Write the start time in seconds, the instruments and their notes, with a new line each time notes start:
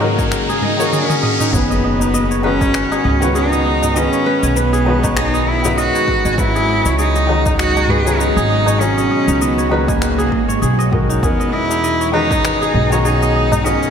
Already playing: upright bass G#2, synth drone C#3 F#3 A#3 D#4 G#4, felt piano C#4 F#4 A#4, kora D#4 G#4 C#5 D#5, riser
0.00 felt piano D#3 G#3 C#4 F#4 A#4, kora A#4, tabla na, tabla tin
0.18 kora G#5, kick, tabla na, cabasa
0.32 kora A#4, finger snap, tabla ge, cabasa
0.48 kora G#4, tabla ge, cabasa
0.61 cello D#4, kora D#5, high tom, tabla ge
0.77 felt piano D#3 G#3 C#4 F#4, kora C#5, cabasa
0.81 felt piano A#4
0.92 cello C#4, kora G#4, mid tom, cabasa
1.09 kora D#5, mid tom, tabla na, cabasa
1.23 kora D#5, mid tom, tabla tin
1.39 kora D#4, mid tom, tabla tin, cabasa
1.51 upright bass F#1, felt piano D#3 G#3 C#4 F#4, synth drone G#3 B3 C#4 F#4, cello B3, kora G#4, kick, impact, cabasa
1.55 felt piano B4
1.70 kora D#5, tabla tin, cabasa
1.84 kora D#5
2.00 kora D#4, tabla tin, cabasa
2.14 kora D#5, cabasa
2.31 kora C#5, cabasa
2.42 felt piano D#3 G#3 C#4 F#4, cello C#4, kora B4, tabla na
2.47 felt piano B4
2.60 kora G#5, kick, tabla na, tabla ge, cabasa
2.74 kora B4, finger snap, cabasa
2.92 kora G#4, tabla na, cabasa
3.04 upright bass C#2, kora D#5, tabla ge
3.20 felt piano D#3 G#3 C#4 F#4, kora C#5, cabasa
3.24 felt piano B4
3.35 cello D#4, kora G#4, cabasa
3.52 kora D#5, cabasa
3.66 kora D#5
3.82 kora D#4, tabla na, tabla ge, cabasa
3.94 felt piano D#3 G#3 C#4 F#4 B4, cello C#4, kora D#5, cabasa
4.13 kora C#5, cabasa
4.26 kora B4
4.43 upright bass B1, kora G#5, tabla tin, cabasa
4.56 cello B3, kora B4, cabasa
4.73 kora G#4, cabasa
4.85 felt piano D#3 G#3 C#4 F#4, kora D#5, tabla na
4.89 felt piano B4
5.03 kora C#5, kick, tabla na, tabla ge, cabasa
5.17 cello D#4, kora G#4, finger snap, cabasa
5.34 kora D#5, cabasa
5.47 cello E4, kora D#5
5.62 felt piano D#3 G#3 C#4 F#4 B4, kora D#4, tabla tin, tabla ge, cabasa
5.78 cello F#4, kora D#5, cabasa
5.94 kora C#5, cabasa
6.08 kora B4, kick, tabla ge
6.25 upright bass G#1, kora G#5, tabla tin, cabasa
6.33 felt piano F#3, cello F#4
6.37 synth drone B2 F#3 F#4, felt piano G#3 C#4 F#4 A#5, cello E4, kora B4, kick, cabasa
6.55 kora G#4, tabla tin, cabasa
6.69 kora D#5
6.86 upright bass C#2, kora C#5, tabla tin, cabasa
6.99 cello D#4, kora G#4, cabasa
7.16 kora D#5, cabasa
7.27 felt piano D#3 G#3 C#4 F#4, kora D#5, tabla na
7.31 felt piano A#5
7.46 kora D#4, kick, tabla na, tabla ge, cabasa
7.59 cello F#4, kora D#5, finger snap, cabasa
7.76 kora C#5, tabla na, cabasa
7.89 cello G#4, kora B4, tabla ge
8.04 felt piano D#3 G#3 C#4 F#4, kora G#5, cabasa
8.08 felt piano A#5
8.20 cello D#4, kora B4, cabasa
8.37 upright bass G#1, kora G#4, cabasa
8.50 kora D#5
8.66 kora C#5, tabla na, tabla ge, cabasa
8.78 felt piano D#3 G#3 C#4 F#4, cello C#4, kora G#4, cabasa
8.82 felt piano A#5
8.97 kora D#5, tabla tin, cabasa
9.11 kora D#5
9.26 upright bass C#2, kora D#4, tabla tin, cabasa
9.35 cello C#4
9.41 cello B3, kora D#5, cabasa
9.58 kora C#5, cabasa
9.69 felt piano D#3 G#3 C#4 F#4, cello A#3, kora B4, tabla na
9.74 felt piano A#5
9.88 kora G#5, kick, tabla na, tabla ge, cabasa
10.01 kora B4, finger snap, cabasa
10.18 kora G#4, cabasa
10.32 upright bass G#1, kora D#5, kick
10.48 kora C#5, tabla tin, tabla ge, cabasa
10.62 upright bass B1, kora G#4, cabasa
10.79 kora D#5, cabasa
10.92 felt piano D#3 G#3 C#4 F#4 A#4, kora D#5, kick, tabla ge
11.09 kora D#4, tabla tin, cabasa
11.21 upright bass E2, synth drone B2 G#4 D#5, felt piano E3 G#3 C#4 F#4 A#4, cello B3, kora G#4, kick, cabasa
11.39 kora D#5, tabla tin, cabasa
11.53 cello E4, kora D#5
11.69 kora D#4, tabla tin, cabasa
11.84 kora D#5, cabasa
12.01 kora C#5, cabasa
12.12 felt piano D#3 G#3 C#4 F#4 A#5, cello D#4, kora B4, tabla na
12.31 kora G#5, kick, tabla na, tabla ge, cabasa
12.44 kora B4, finger snap, cabasa
12.61 kora G#4, tabla na, cabasa
12.74 upright bass B1, kora D#5, tabla ge
12.90 felt piano D#3 G#3 C#4 F#4 A#5, kora C#5, cabasa
13.04 cello D#4, kora G#4, cabasa
13.22 kora D#5, cabasa
13.36 kora D#5
13.52 kora D#4, tabla na, tabla ge, cabasa
13.64 felt piano D#3 G#3 C#4 F#4 A#5, cello C#4, kora D#5, cabasa
13.82 kora C#5, tabla tin, cabasa